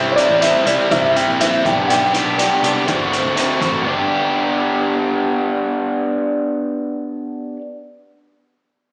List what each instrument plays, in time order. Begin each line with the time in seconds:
Already playing: fingered electric bass C2, overdriven electric guitar G3 C4 E4
0.12 upright piano C#5
0.16 overdriven electric guitar G3 C4 E4, upright piano D5, closed hi-hat
0.29 fingered electric bass A1
0.42 overdriven electric guitar G3 C4 E4, upright piano E5, closed hi-hat
0.65 fingered electric bass C2, overdriven electric guitar G3 C4 E4, upright piano D5, closed hi-hat
0.91 fingered electric bass C2, overdriven electric guitar G3 C4 E4, upright piano E5, kick, closed hi-hat
1.15 overdriven electric guitar G3 C4 E4, upright piano G5, closed hi-hat
1.28 fingered electric bass A#1
1.40 overdriven electric guitar G3 C4 E4, upright piano E5, closed hi-hat
1.65 fingered electric bass B1, overdriven electric guitar B3 D4 G4, upright piano G5, kick, closed hi-hat
1.87 fingered electric bass B1, overdriven electric guitar B3 D4 G4, upright piano F#5, closed hi-hat
1.91 upright piano G5
2.14 overdriven electric guitar B3 D4 G4, closed hi-hat
2.26 fingered electric bass B1
2.38 overdriven electric guitar B3 D4 G4, closed hi-hat
2.63 fingered electric bass C2, overdriven electric guitar B3 D4 G4, closed hi-hat
2.87 fingered electric bass D2, overdriven electric guitar A3 C4 F#4, kick, closed hi-hat
3.12 overdriven electric guitar A3 C4 F#4, closed hi-hat
3.25 fingered electric bass D2
3.36 overdriven electric guitar A3 C4 F#4, closed hi-hat
3.61 fingered electric bass A1, overdriven electric guitar A3 C4 F#4, kick, closed hi-hat
3.85 fingered electric bass G1, overdriven electric guitar B3 D4
3.89 overdriven electric guitar G4